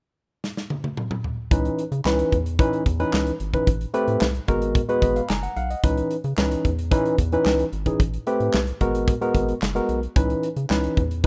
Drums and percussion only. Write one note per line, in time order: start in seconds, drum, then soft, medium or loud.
0.44 snare medium
0.57 snare medium
0.70 high tom medium
0.84 high tom medium
0.97 mid tom medium
1.11 mid tom medium
1.24 floor tom medium
1.51 kick loud
1.51 closed hi-hat loud
1.65 closed hi-hat soft
1.79 closed hi-hat medium
1.92 closed hi-hat soft
2.05 snare loud
2.05 clap medium
2.19 closed hi-hat medium
2.32 kick medium
2.32 closed hi-hat medium
2.46 closed hi-hat medium
2.59 kick loud
2.59 closed hi-hat medium
2.73 closed hi-hat soft
2.86 kick medium
2.86 closed hi-hat medium
3.00 closed hi-hat soft
3.13 snare medium
3.13 clap medium
3.27 closed hi-hat medium
3.40 closed hi-hat medium
3.54 kick medium
3.54 closed hi-hat soft
3.67 kick loud
3.67 closed hi-hat medium
3.81 closed hi-hat soft
3.94 closed hi-hat medium
4.08 closed hi-hat soft
4.21 snare loud
4.21 clap medium
4.35 closed hi-hat medium
4.48 kick medium
4.48 closed hi-hat medium
4.62 closed hi-hat medium
4.75 kick loud
4.75 closed hi-hat medium
4.89 closed hi-hat soft
5.02 kick medium
5.02 closed hi-hat medium
5.16 closed hi-hat soft
5.29 snare medium
5.29 clap medium
5.43 closed hi-hat medium
5.56 closed hi-hat medium
5.71 closed hi-hat medium
5.84 kick loud
5.84 closed hi-hat medium
5.97 closed hi-hat soft
6.11 closed hi-hat medium
6.24 closed hi-hat soft
6.37 snare loud
6.37 clap loud
6.51 closed hi-hat medium
6.65 kick medium
6.65 closed hi-hat medium
6.79 closed hi-hat medium
6.92 kick loud
6.92 closed hi-hat medium
7.05 closed hi-hat soft
7.18 kick medium
7.18 closed hi-hat medium
7.32 closed hi-hat soft
7.46 snare medium
7.46 clap medium
7.59 closed hi-hat medium
7.73 closed hi-hat medium
7.86 kick medium
7.86 closed hi-hat medium
8.00 kick loud
8.00 closed hi-hat medium
8.14 closed hi-hat soft
8.27 closed hi-hat medium
8.40 closed hi-hat soft
8.53 snare loud
8.53 clap medium
8.67 closed hi-hat medium
8.81 kick medium
8.81 closed hi-hat medium
8.95 closed hi-hat medium
9.08 kick loud
9.08 closed hi-hat medium
9.22 closed hi-hat soft
9.35 kick medium
9.35 closed hi-hat medium
9.48 closed hi-hat soft
9.62 snare medium
9.62 clap medium
9.76 closed hi-hat soft
9.89 closed hi-hat medium
10.03 closed hi-hat soft
10.16 kick loud
10.16 closed hi-hat medium
10.30 closed hi-hat soft
10.43 closed hi-hat medium
10.57 closed hi-hat soft
10.70 snare loud
10.70 clap medium
10.84 closed hi-hat soft
10.97 kick medium
10.97 closed hi-hat medium
11.11 closed hi-hat medium